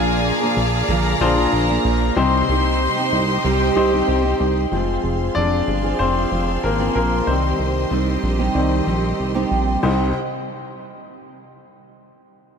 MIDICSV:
0, 0, Header, 1, 6, 480
1, 0, Start_track
1, 0, Key_signature, -3, "minor"
1, 0, Tempo, 638298
1, 1631, Time_signature, 4, 2, 24, 8
1, 9463, End_track
2, 0, Start_track
2, 0, Title_t, "Violin section"
2, 0, Program_c, 0, 48
2, 0, Note_on_c, 0, 68, 89
2, 0, Note_on_c, 0, 80, 93
2, 645, Note_off_c, 0, 80, 0
2, 646, Note_off_c, 0, 68, 0
2, 671, Note_on_c, 0, 70, 84
2, 671, Note_on_c, 0, 82, 87
2, 1612, Note_off_c, 0, 70, 0
2, 1612, Note_off_c, 0, 82, 0
2, 1633, Note_on_c, 0, 72, 77
2, 1633, Note_on_c, 0, 84, 92
2, 2573, Note_off_c, 0, 72, 0
2, 2573, Note_off_c, 0, 84, 0
2, 2589, Note_on_c, 0, 79, 85
2, 2590, Note_on_c, 0, 67, 87
2, 3531, Note_off_c, 0, 67, 0
2, 3531, Note_off_c, 0, 79, 0
2, 9463, End_track
3, 0, Start_track
3, 0, Title_t, "String section"
3, 0, Program_c, 1, 48
3, 0, Note_on_c, 1, 68, 73
3, 0, Note_on_c, 1, 74, 79
3, 0, Note_on_c, 1, 77, 74
3, 0, Note_on_c, 1, 82, 87
3, 1610, Note_off_c, 1, 68, 0
3, 1610, Note_off_c, 1, 74, 0
3, 1610, Note_off_c, 1, 77, 0
3, 1610, Note_off_c, 1, 82, 0
3, 1627, Note_on_c, 1, 75, 60
3, 1628, Note_on_c, 1, 72, 65
3, 1628, Note_on_c, 1, 84, 78
3, 1630, Note_on_c, 1, 67, 67
3, 3530, Note_off_c, 1, 72, 0
3, 3530, Note_off_c, 1, 75, 0
3, 3530, Note_off_c, 1, 84, 0
3, 3531, Note_off_c, 1, 67, 0
3, 3555, Note_on_c, 1, 72, 55
3, 3555, Note_on_c, 1, 77, 57
3, 3555, Note_on_c, 1, 84, 69
3, 3556, Note_on_c, 1, 68, 57
3, 5454, Note_off_c, 1, 77, 0
3, 5455, Note_off_c, 1, 68, 0
3, 5472, Note_on_c, 1, 67, 59
3, 5475, Note_on_c, 1, 75, 60
3, 7363, Note_off_c, 1, 72, 0
3, 7363, Note_off_c, 1, 84, 0
3, 7373, Note_off_c, 1, 67, 0
3, 7374, Note_off_c, 1, 75, 0
3, 7394, Note_on_c, 1, 48, 57
3, 7394, Note_on_c, 1, 60, 57
3, 7395, Note_on_c, 1, 79, 64
3, 7396, Note_on_c, 1, 75, 51
3, 7616, Note_off_c, 1, 48, 0
3, 7616, Note_off_c, 1, 60, 0
3, 7617, Note_off_c, 1, 75, 0
3, 7617, Note_off_c, 1, 79, 0
3, 9463, End_track
4, 0, Start_track
4, 0, Title_t, "Grand piano"
4, 0, Program_c, 2, 0
4, 0, Control_c, 2, 64, 127
4, 0, Note_on_c, 2, 46, 83
4, 0, Note_on_c, 2, 62, 89
4, 0, Note_on_c, 2, 65, 93
4, 0, Note_on_c, 2, 68, 79
4, 0, Note_on_c, 2, 70, 103
4, 161, Note_off_c, 2, 46, 0
4, 237, Note_off_c, 2, 62, 0
4, 239, Note_off_c, 2, 65, 0
4, 240, Note_off_c, 2, 68, 0
4, 240, Note_off_c, 2, 70, 0
4, 908, Note_on_c, 2, 62, 80
4, 910, Note_on_c, 2, 65, 81
4, 912, Note_on_c, 2, 68, 70
4, 914, Note_on_c, 2, 72, 91
4, 1460, Note_off_c, 2, 62, 0
4, 1461, Note_off_c, 2, 65, 0
4, 1462, Note_off_c, 2, 68, 0
4, 1463, Note_off_c, 2, 72, 0
4, 1627, Note_on_c, 2, 60, 84
4, 1628, Note_on_c, 2, 63, 68
4, 1630, Note_on_c, 2, 48, 71
4, 1631, Note_on_c, 2, 67, 73
4, 1634, Note_on_c, 2, 72, 87
4, 1640, Control_c, 2, 64, 0
4, 1781, Control_c, 2, 64, 127
4, 2320, Note_off_c, 2, 48, 0
4, 2363, Note_off_c, 2, 60, 0
4, 2364, Note_off_c, 2, 63, 0
4, 2365, Note_off_c, 2, 67, 0
4, 2366, Note_off_c, 2, 72, 0
4, 2827, Note_on_c, 2, 60, 80
4, 2830, Note_on_c, 2, 63, 67
4, 2833, Note_on_c, 2, 67, 69
4, 2835, Note_on_c, 2, 72, 89
4, 3380, Note_off_c, 2, 60, 0
4, 3381, Note_off_c, 2, 63, 0
4, 3382, Note_off_c, 2, 67, 0
4, 3384, Note_off_c, 2, 72, 0
4, 3548, Note_on_c, 2, 53, 44
4, 3553, Note_on_c, 2, 56, 40
4, 3556, Note_on_c, 2, 60, 54
4, 3560, Control_c, 2, 64, 0
4, 3684, Control_c, 2, 64, 127
4, 4022, Note_on_c, 2, 74, 93
4, 4037, Note_on_c, 2, 62, 72
4, 4484, Note_off_c, 2, 62, 0
4, 4504, Note_off_c, 2, 60, 0
4, 4505, Note_on_c, 2, 72, 93
4, 4516, Note_on_c, 2, 60, 74
4, 4521, Note_off_c, 2, 74, 0
4, 4963, Note_off_c, 2, 60, 0
4, 4991, Note_on_c, 2, 70, 76
4, 5000, Note_on_c, 2, 58, 66
4, 5003, Note_off_c, 2, 72, 0
4, 5045, Note_off_c, 2, 70, 0
4, 5053, Note_off_c, 2, 58, 0
4, 5227, Note_on_c, 2, 70, 87
4, 5235, Note_on_c, 2, 58, 66
4, 5439, Note_off_c, 2, 53, 0
4, 5442, Note_off_c, 2, 56, 0
4, 5456, Note_off_c, 2, 58, 0
4, 5468, Note_on_c, 2, 51, 47
4, 5468, Note_on_c, 2, 72, 80
4, 5470, Note_on_c, 2, 55, 45
4, 5476, Note_on_c, 2, 60, 61
4, 5477, Note_off_c, 2, 70, 0
4, 5482, Control_c, 2, 64, 0
4, 5601, Control_c, 2, 64, 127
4, 6159, Note_off_c, 2, 51, 0
4, 6161, Note_off_c, 2, 55, 0
4, 6423, Note_off_c, 2, 60, 0
4, 6428, Note_on_c, 2, 51, 51
4, 6431, Note_on_c, 2, 55, 47
4, 6435, Note_on_c, 2, 60, 63
4, 6645, Note_off_c, 2, 51, 0
4, 6647, Note_off_c, 2, 55, 0
4, 6649, Note_off_c, 2, 60, 0
4, 6880, Note_off_c, 2, 72, 0
4, 7391, Note_on_c, 2, 36, 72
4, 7391, Note_on_c, 2, 67, 69
4, 7392, Note_on_c, 2, 63, 66
4, 7392, Note_on_c, 2, 72, 76
4, 7401, Control_c, 2, 64, 0
4, 7614, Note_off_c, 2, 36, 0
4, 7615, Note_off_c, 2, 63, 0
4, 7615, Note_off_c, 2, 67, 0
4, 7615, Note_off_c, 2, 72, 0
4, 9463, End_track
5, 0, Start_track
5, 0, Title_t, "Steel-string acoustic guitar"
5, 0, Program_c, 3, 25
5, 0, Note_on_c, 3, 53, 69
5, 0, Note_on_c, 3, 58, 76
5, 0, Note_on_c, 3, 62, 83
5, 0, Note_on_c, 3, 68, 79
5, 294, Note_off_c, 3, 68, 0
5, 303, Note_on_c, 3, 68, 65
5, 304, Note_off_c, 3, 62, 0
5, 306, Note_off_c, 3, 53, 0
5, 311, Note_off_c, 3, 58, 0
5, 313, Note_on_c, 3, 62, 58
5, 321, Note_on_c, 3, 58, 57
5, 326, Note_on_c, 3, 53, 49
5, 664, Note_off_c, 3, 53, 0
5, 666, Note_on_c, 3, 46, 89
5, 667, Note_off_c, 3, 58, 0
5, 667, Note_off_c, 3, 68, 0
5, 670, Note_off_c, 3, 62, 0
5, 670, Note_on_c, 3, 50, 87
5, 673, Note_on_c, 3, 53, 98
5, 676, Note_on_c, 3, 58, 109
5, 679, Note_on_c, 3, 62, 89
5, 682, Note_on_c, 3, 68, 98
5, 1018, Note_off_c, 3, 68, 0
5, 1022, Note_off_c, 3, 62, 0
5, 1026, Note_off_c, 3, 58, 0
5, 1027, Note_on_c, 3, 68, 79
5, 1028, Note_off_c, 3, 46, 0
5, 1030, Note_off_c, 3, 53, 0
5, 1031, Note_off_c, 3, 50, 0
5, 1031, Note_on_c, 3, 62, 75
5, 1035, Note_on_c, 3, 58, 70
5, 1039, Note_on_c, 3, 53, 72
5, 1041, Note_on_c, 3, 50, 66
5, 1044, Note_on_c, 3, 46, 71
5, 1255, Note_off_c, 3, 68, 0
5, 1264, Note_off_c, 3, 62, 0
5, 1264, Note_on_c, 3, 68, 65
5, 1271, Note_off_c, 3, 58, 0
5, 1273, Note_on_c, 3, 62, 60
5, 1275, Note_off_c, 3, 53, 0
5, 1276, Note_off_c, 3, 50, 0
5, 1277, Note_off_c, 3, 46, 0
5, 1280, Note_on_c, 3, 58, 55
5, 1287, Note_on_c, 3, 53, 48
5, 1619, Note_off_c, 3, 53, 0
5, 1622, Note_on_c, 3, 55, 69
5, 1627, Note_off_c, 3, 68, 0
5, 1629, Note_off_c, 3, 58, 0
5, 1632, Note_off_c, 3, 62, 0
5, 1632, Note_on_c, 3, 60, 72
5, 1640, Note_on_c, 3, 63, 74
5, 1647, Note_on_c, 3, 67, 72
5, 1854, Note_off_c, 3, 55, 0
5, 1863, Note_off_c, 3, 60, 0
5, 1863, Note_on_c, 3, 55, 67
5, 1870, Note_off_c, 3, 63, 0
5, 1872, Note_on_c, 3, 60, 66
5, 1879, Note_off_c, 3, 67, 0
5, 1879, Note_on_c, 3, 63, 72
5, 1887, Note_on_c, 3, 67, 84
5, 2213, Note_off_c, 3, 67, 0
5, 2222, Note_on_c, 3, 67, 63
5, 2226, Note_off_c, 3, 63, 0
5, 2227, Note_off_c, 3, 55, 0
5, 2232, Note_off_c, 3, 60, 0
5, 2235, Note_on_c, 3, 63, 61
5, 2246, Note_on_c, 3, 60, 50
5, 2586, Note_off_c, 3, 67, 0
5, 2587, Note_off_c, 3, 60, 0
5, 2587, Note_on_c, 3, 48, 76
5, 2590, Note_off_c, 3, 63, 0
5, 2592, Note_on_c, 3, 55, 85
5, 2596, Note_on_c, 3, 60, 89
5, 2599, Note_on_c, 3, 63, 102
5, 2603, Note_on_c, 3, 67, 98
5, 2937, Note_off_c, 3, 67, 0
5, 2942, Note_off_c, 3, 63, 0
5, 2946, Note_on_c, 3, 67, 66
5, 2947, Note_off_c, 3, 60, 0
5, 2949, Note_off_c, 3, 48, 0
5, 2951, Note_off_c, 3, 55, 0
5, 2951, Note_on_c, 3, 63, 76
5, 2956, Note_on_c, 3, 60, 67
5, 2959, Note_on_c, 3, 55, 70
5, 2962, Note_on_c, 3, 48, 61
5, 3176, Note_off_c, 3, 67, 0
5, 3185, Note_on_c, 3, 67, 64
5, 3188, Note_off_c, 3, 63, 0
5, 3194, Note_off_c, 3, 60, 0
5, 3195, Note_off_c, 3, 55, 0
5, 3197, Note_off_c, 3, 48, 0
5, 3197, Note_on_c, 3, 63, 58
5, 3207, Note_on_c, 3, 60, 52
5, 3546, Note_on_c, 3, 53, 66
5, 3547, Note_off_c, 3, 60, 0
5, 3548, Note_off_c, 3, 67, 0
5, 3554, Note_off_c, 3, 63, 0
5, 3556, Note_on_c, 3, 60, 63
5, 3562, Note_on_c, 3, 65, 62
5, 3571, Note_on_c, 3, 68, 66
5, 4018, Note_off_c, 3, 53, 0
5, 4027, Note_on_c, 3, 53, 66
5, 4033, Note_off_c, 3, 60, 0
5, 4035, Note_off_c, 3, 65, 0
5, 4036, Note_on_c, 3, 60, 68
5, 4041, Note_off_c, 3, 68, 0
5, 4044, Note_on_c, 3, 65, 65
5, 4051, Note_on_c, 3, 68, 64
5, 4377, Note_off_c, 3, 68, 0
5, 4384, Note_off_c, 3, 65, 0
5, 4386, Note_on_c, 3, 68, 67
5, 4388, Note_off_c, 3, 60, 0
5, 4389, Note_off_c, 3, 53, 0
5, 4393, Note_on_c, 3, 65, 64
5, 4397, Note_on_c, 3, 60, 57
5, 4404, Note_on_c, 3, 53, 53
5, 4736, Note_off_c, 3, 53, 0
5, 4745, Note_off_c, 3, 60, 0
5, 4745, Note_on_c, 3, 53, 59
5, 4749, Note_off_c, 3, 68, 0
5, 4752, Note_off_c, 3, 65, 0
5, 4755, Note_on_c, 3, 60, 65
5, 4763, Note_on_c, 3, 65, 64
5, 4770, Note_on_c, 3, 68, 68
5, 5096, Note_off_c, 3, 68, 0
5, 5103, Note_off_c, 3, 65, 0
5, 5105, Note_on_c, 3, 68, 78
5, 5107, Note_off_c, 3, 60, 0
5, 5108, Note_off_c, 3, 53, 0
5, 5112, Note_on_c, 3, 65, 71
5, 5116, Note_on_c, 3, 60, 68
5, 5122, Note_on_c, 3, 53, 64
5, 5460, Note_off_c, 3, 53, 0
5, 5463, Note_off_c, 3, 60, 0
5, 5463, Note_on_c, 3, 55, 65
5, 5468, Note_off_c, 3, 68, 0
5, 5472, Note_off_c, 3, 65, 0
5, 5472, Note_on_c, 3, 60, 70
5, 5480, Note_on_c, 3, 63, 64
5, 5487, Note_on_c, 3, 67, 79
5, 5939, Note_off_c, 3, 55, 0
5, 5942, Note_on_c, 3, 55, 68
5, 5950, Note_off_c, 3, 60, 0
5, 5953, Note_on_c, 3, 60, 68
5, 5957, Note_off_c, 3, 63, 0
5, 5960, Note_on_c, 3, 63, 67
5, 5963, Note_off_c, 3, 67, 0
5, 5966, Note_on_c, 3, 67, 81
5, 6296, Note_off_c, 3, 67, 0
5, 6302, Note_off_c, 3, 63, 0
5, 6305, Note_off_c, 3, 60, 0
5, 6305, Note_on_c, 3, 67, 70
5, 6307, Note_off_c, 3, 55, 0
5, 6311, Note_on_c, 3, 63, 63
5, 6314, Note_on_c, 3, 60, 60
5, 6319, Note_on_c, 3, 55, 62
5, 6322, Note_on_c, 3, 48, 61
5, 6658, Note_off_c, 3, 55, 0
5, 6666, Note_off_c, 3, 60, 0
5, 6667, Note_on_c, 3, 55, 62
5, 6668, Note_off_c, 3, 67, 0
5, 6671, Note_off_c, 3, 63, 0
5, 6675, Note_on_c, 3, 60, 66
5, 6677, Note_off_c, 3, 48, 0
5, 6682, Note_on_c, 3, 63, 63
5, 6690, Note_on_c, 3, 67, 68
5, 7018, Note_off_c, 3, 67, 0
5, 7022, Note_off_c, 3, 63, 0
5, 7027, Note_off_c, 3, 60, 0
5, 7027, Note_on_c, 3, 67, 77
5, 7029, Note_off_c, 3, 55, 0
5, 7031, Note_on_c, 3, 63, 77
5, 7036, Note_on_c, 3, 60, 77
5, 7039, Note_on_c, 3, 55, 75
5, 7043, Note_on_c, 3, 48, 61
5, 7375, Note_off_c, 3, 48, 0
5, 7381, Note_off_c, 3, 55, 0
5, 7384, Note_on_c, 3, 48, 83
5, 7386, Note_off_c, 3, 60, 0
5, 7389, Note_off_c, 3, 67, 0
5, 7390, Note_on_c, 3, 55, 82
5, 7391, Note_off_c, 3, 63, 0
5, 7395, Note_on_c, 3, 60, 81
5, 7399, Note_on_c, 3, 63, 79
5, 7403, Note_on_c, 3, 67, 90
5, 7579, Note_off_c, 3, 48, 0
5, 7583, Note_off_c, 3, 55, 0
5, 7585, Note_off_c, 3, 60, 0
5, 7587, Note_off_c, 3, 63, 0
5, 7589, Note_off_c, 3, 67, 0
5, 9463, End_track
6, 0, Start_track
6, 0, Title_t, "Analog synth bass"
6, 0, Program_c, 4, 38
6, 0, Note_on_c, 4, 34, 81
6, 244, Note_off_c, 4, 34, 0
6, 427, Note_on_c, 4, 34, 106
6, 626, Note_off_c, 4, 34, 0
6, 667, Note_on_c, 4, 34, 96
6, 865, Note_off_c, 4, 34, 0
6, 908, Note_on_c, 4, 34, 101
6, 1106, Note_off_c, 4, 34, 0
6, 1147, Note_on_c, 4, 34, 93
6, 1345, Note_off_c, 4, 34, 0
6, 1390, Note_on_c, 4, 34, 103
6, 1587, Note_off_c, 4, 34, 0
6, 1629, Note_on_c, 4, 36, 110
6, 1827, Note_off_c, 4, 36, 0
6, 1872, Note_on_c, 4, 36, 96
6, 2167, Note_off_c, 4, 36, 0
6, 2351, Note_on_c, 4, 36, 108
6, 2548, Note_off_c, 4, 36, 0
6, 2591, Note_on_c, 4, 36, 96
6, 2788, Note_off_c, 4, 36, 0
6, 2829, Note_on_c, 4, 36, 92
6, 3027, Note_off_c, 4, 36, 0
6, 3068, Note_on_c, 4, 36, 91
6, 3266, Note_off_c, 4, 36, 0
6, 3310, Note_on_c, 4, 36, 104
6, 3507, Note_off_c, 4, 36, 0
6, 3550, Note_on_c, 4, 29, 95
6, 3747, Note_off_c, 4, 29, 0
6, 3789, Note_on_c, 4, 29, 88
6, 3987, Note_off_c, 4, 29, 0
6, 4031, Note_on_c, 4, 29, 95
6, 4228, Note_off_c, 4, 29, 0
6, 4270, Note_on_c, 4, 31, 84
6, 4467, Note_off_c, 4, 31, 0
6, 4512, Note_on_c, 4, 29, 88
6, 4708, Note_off_c, 4, 29, 0
6, 4750, Note_on_c, 4, 29, 92
6, 4947, Note_off_c, 4, 29, 0
6, 4992, Note_on_c, 4, 32, 83
6, 5189, Note_off_c, 4, 32, 0
6, 5232, Note_on_c, 4, 34, 84
6, 5428, Note_off_c, 4, 34, 0
6, 5470, Note_on_c, 4, 36, 97
6, 5668, Note_off_c, 4, 36, 0
6, 5710, Note_on_c, 4, 36, 79
6, 5907, Note_off_c, 4, 36, 0
6, 5949, Note_on_c, 4, 36, 101
6, 6147, Note_off_c, 4, 36, 0
6, 6191, Note_on_c, 4, 34, 90
6, 6388, Note_off_c, 4, 34, 0
6, 6430, Note_on_c, 4, 36, 98
6, 6628, Note_off_c, 4, 36, 0
6, 6673, Note_on_c, 4, 34, 88
6, 6869, Note_off_c, 4, 34, 0
6, 6913, Note_on_c, 4, 36, 81
6, 7109, Note_off_c, 4, 36, 0
6, 7154, Note_on_c, 4, 34, 83
6, 7350, Note_off_c, 4, 34, 0
6, 7396, Note_on_c, 4, 36, 106
6, 7617, Note_off_c, 4, 36, 0
6, 9463, End_track
0, 0, End_of_file